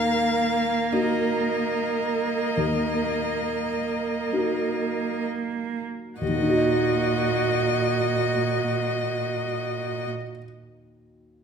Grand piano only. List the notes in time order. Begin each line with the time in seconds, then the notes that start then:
Already playing: D#2 D#3
0.92 A#3 D#4 F#4
2.57 D#2 D#3
4.32 A#3 D#4 F#4
6.21 D#2
6.28 D#3
6.35 A#3
6.42 D#4
6.49 F#4
6.56 D#5